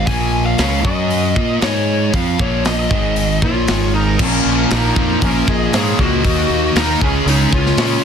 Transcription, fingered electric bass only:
0, 0, Header, 1, 2, 480
1, 0, Start_track
1, 0, Key_signature, -5, "minor"
1, 0, Tempo, 514139
1, 68, Time_signature, 4, 2, 24, 8
1, 7506, End_track
2, 0, Start_track
2, 0, Title_t, "Fingered electric bass"
2, 0, Program_c, 0, 33
2, 64, Note_on_c, 0, 34, 90
2, 515, Note_off_c, 0, 34, 0
2, 553, Note_on_c, 0, 37, 87
2, 776, Note_off_c, 0, 37, 0
2, 787, Note_on_c, 0, 42, 93
2, 1237, Note_off_c, 0, 42, 0
2, 1270, Note_on_c, 0, 46, 91
2, 1496, Note_off_c, 0, 46, 0
2, 1518, Note_on_c, 0, 44, 92
2, 1964, Note_off_c, 0, 44, 0
2, 1993, Note_on_c, 0, 41, 87
2, 2219, Note_off_c, 0, 41, 0
2, 2235, Note_on_c, 0, 34, 89
2, 2683, Note_off_c, 0, 34, 0
2, 2713, Note_on_c, 0, 32, 88
2, 3162, Note_off_c, 0, 32, 0
2, 3194, Note_on_c, 0, 34, 84
2, 3420, Note_off_c, 0, 34, 0
2, 3443, Note_on_c, 0, 32, 88
2, 3887, Note_off_c, 0, 32, 0
2, 3914, Note_on_c, 0, 34, 95
2, 4093, Note_off_c, 0, 34, 0
2, 4157, Note_on_c, 0, 34, 89
2, 4335, Note_off_c, 0, 34, 0
2, 4405, Note_on_c, 0, 34, 95
2, 4580, Note_off_c, 0, 34, 0
2, 4632, Note_on_c, 0, 41, 86
2, 4811, Note_off_c, 0, 41, 0
2, 4873, Note_on_c, 0, 34, 98
2, 5052, Note_off_c, 0, 34, 0
2, 5113, Note_on_c, 0, 34, 88
2, 5291, Note_off_c, 0, 34, 0
2, 5350, Note_on_c, 0, 44, 97
2, 5529, Note_off_c, 0, 44, 0
2, 5590, Note_on_c, 0, 37, 99
2, 5829, Note_off_c, 0, 37, 0
2, 5829, Note_on_c, 0, 39, 99
2, 6008, Note_off_c, 0, 39, 0
2, 6063, Note_on_c, 0, 39, 90
2, 6244, Note_off_c, 0, 39, 0
2, 6304, Note_on_c, 0, 39, 91
2, 6484, Note_off_c, 0, 39, 0
2, 6549, Note_on_c, 0, 37, 96
2, 6727, Note_off_c, 0, 37, 0
2, 6775, Note_on_c, 0, 37, 93
2, 6957, Note_off_c, 0, 37, 0
2, 7023, Note_on_c, 0, 37, 94
2, 7202, Note_off_c, 0, 37, 0
2, 7254, Note_on_c, 0, 46, 92
2, 7436, Note_off_c, 0, 46, 0
2, 7506, End_track
0, 0, End_of_file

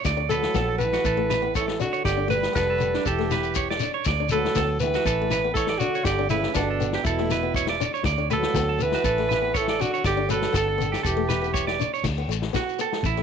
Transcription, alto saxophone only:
0, 0, Header, 1, 2, 480
1, 0, Start_track
1, 0, Key_signature, 2, "major"
1, 0, Tempo, 499584
1, 55, Time_signature, 4, 2, 24, 8
1, 12709, End_track
2, 0, Start_track
2, 0, Title_t, "Alto saxophone"
2, 0, Program_c, 0, 65
2, 281, Note_on_c, 0, 69, 100
2, 735, Note_off_c, 0, 69, 0
2, 753, Note_on_c, 0, 71, 100
2, 1447, Note_off_c, 0, 71, 0
2, 1499, Note_on_c, 0, 69, 81
2, 1722, Note_off_c, 0, 69, 0
2, 1738, Note_on_c, 0, 66, 76
2, 1961, Note_off_c, 0, 66, 0
2, 1971, Note_on_c, 0, 67, 82
2, 2198, Note_off_c, 0, 67, 0
2, 2210, Note_on_c, 0, 71, 93
2, 2438, Note_off_c, 0, 71, 0
2, 2453, Note_on_c, 0, 71, 107
2, 2946, Note_on_c, 0, 67, 88
2, 2960, Note_off_c, 0, 71, 0
2, 3664, Note_off_c, 0, 67, 0
2, 4147, Note_on_c, 0, 69, 104
2, 4591, Note_off_c, 0, 69, 0
2, 4614, Note_on_c, 0, 71, 97
2, 5300, Note_off_c, 0, 71, 0
2, 5321, Note_on_c, 0, 69, 91
2, 5558, Note_on_c, 0, 66, 88
2, 5572, Note_off_c, 0, 69, 0
2, 5803, Note_on_c, 0, 67, 97
2, 5817, Note_off_c, 0, 66, 0
2, 6045, Note_off_c, 0, 67, 0
2, 6050, Note_on_c, 0, 64, 88
2, 6276, Note_off_c, 0, 64, 0
2, 6282, Note_on_c, 0, 62, 86
2, 6738, Note_off_c, 0, 62, 0
2, 6762, Note_on_c, 0, 64, 82
2, 7453, Note_off_c, 0, 64, 0
2, 8005, Note_on_c, 0, 69, 106
2, 8479, Note_on_c, 0, 71, 104
2, 8493, Note_off_c, 0, 69, 0
2, 9194, Note_on_c, 0, 69, 100
2, 9208, Note_off_c, 0, 71, 0
2, 9424, Note_on_c, 0, 66, 88
2, 9439, Note_off_c, 0, 69, 0
2, 9662, Note_off_c, 0, 66, 0
2, 9673, Note_on_c, 0, 67, 90
2, 9899, Note_on_c, 0, 69, 93
2, 9913, Note_off_c, 0, 67, 0
2, 10139, Note_off_c, 0, 69, 0
2, 10159, Note_on_c, 0, 69, 100
2, 10629, Note_on_c, 0, 67, 83
2, 10643, Note_off_c, 0, 69, 0
2, 11343, Note_off_c, 0, 67, 0
2, 12709, End_track
0, 0, End_of_file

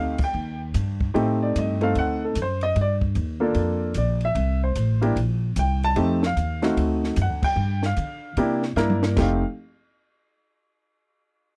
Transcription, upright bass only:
0, 0, Header, 1, 2, 480
1, 0, Start_track
1, 0, Tempo, 402145
1, 1358, Time_signature, 4, 2, 24, 8
1, 13798, End_track
2, 0, Start_track
2, 0, Title_t, "Upright bass"
2, 0, Program_c, 0, 32
2, 0, Note_on_c, 0, 38, 86
2, 383, Note_off_c, 0, 38, 0
2, 403, Note_on_c, 0, 39, 84
2, 866, Note_off_c, 0, 39, 0
2, 889, Note_on_c, 0, 43, 94
2, 1349, Note_off_c, 0, 43, 0
2, 1368, Note_on_c, 0, 45, 86
2, 1828, Note_off_c, 0, 45, 0
2, 1855, Note_on_c, 0, 43, 82
2, 2312, Note_off_c, 0, 43, 0
2, 2332, Note_on_c, 0, 38, 84
2, 2790, Note_off_c, 0, 38, 0
2, 2809, Note_on_c, 0, 42, 88
2, 3269, Note_off_c, 0, 42, 0
2, 3291, Note_on_c, 0, 43, 92
2, 3749, Note_off_c, 0, 43, 0
2, 3765, Note_on_c, 0, 39, 88
2, 4226, Note_off_c, 0, 39, 0
2, 4238, Note_on_c, 0, 41, 82
2, 4702, Note_off_c, 0, 41, 0
2, 4721, Note_on_c, 0, 34, 94
2, 5183, Note_off_c, 0, 34, 0
2, 5191, Note_on_c, 0, 36, 92
2, 5658, Note_off_c, 0, 36, 0
2, 5680, Note_on_c, 0, 33, 80
2, 6143, Note_off_c, 0, 33, 0
2, 6158, Note_on_c, 0, 34, 85
2, 6622, Note_off_c, 0, 34, 0
2, 6639, Note_on_c, 0, 36, 95
2, 7103, Note_off_c, 0, 36, 0
2, 7122, Note_on_c, 0, 41, 91
2, 7584, Note_off_c, 0, 41, 0
2, 7596, Note_on_c, 0, 39, 81
2, 8061, Note_off_c, 0, 39, 0
2, 8077, Note_on_c, 0, 38, 82
2, 8541, Note_off_c, 0, 38, 0
2, 8556, Note_on_c, 0, 42, 93
2, 8703, Note_off_c, 0, 42, 0
2, 8703, Note_on_c, 0, 38, 52
2, 8857, Note_off_c, 0, 38, 0
2, 8865, Note_on_c, 0, 36, 60
2, 9018, Note_off_c, 0, 36, 0
2, 9023, Note_on_c, 0, 43, 91
2, 9494, Note_off_c, 0, 43, 0
2, 9512, Note_on_c, 0, 50, 90
2, 9979, Note_off_c, 0, 50, 0
2, 9988, Note_on_c, 0, 48, 85
2, 10450, Note_off_c, 0, 48, 0
2, 10457, Note_on_c, 0, 43, 95
2, 10932, Note_off_c, 0, 43, 0
2, 10946, Note_on_c, 0, 29, 95
2, 11237, Note_off_c, 0, 29, 0
2, 13798, End_track
0, 0, End_of_file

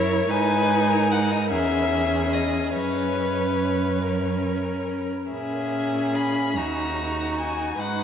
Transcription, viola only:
0, 0, Header, 1, 2, 480
1, 0, Start_track
1, 0, Tempo, 821918
1, 174, Time_signature, 6, 3, 24, 8
1, 1605, Tempo, 852273
1, 3525, Tempo, 816327
1, 4629, End_track
2, 0, Start_track
2, 0, Title_t, "Viola"
2, 0, Program_c, 0, 41
2, 0, Note_on_c, 0, 64, 57
2, 150, Note_off_c, 0, 64, 0
2, 178, Note_on_c, 0, 63, 64
2, 863, Note_off_c, 0, 63, 0
2, 887, Note_on_c, 0, 61, 55
2, 1591, Note_off_c, 0, 61, 0
2, 1605, Note_on_c, 0, 61, 45
2, 2311, Note_off_c, 0, 61, 0
2, 2330, Note_on_c, 0, 61, 37
2, 2922, Note_off_c, 0, 61, 0
2, 3059, Note_on_c, 0, 61, 42
2, 3772, Note_on_c, 0, 63, 40
2, 3781, Note_off_c, 0, 61, 0
2, 4488, Note_off_c, 0, 63, 0
2, 4492, Note_on_c, 0, 63, 40
2, 4629, Note_off_c, 0, 63, 0
2, 4629, End_track
0, 0, End_of_file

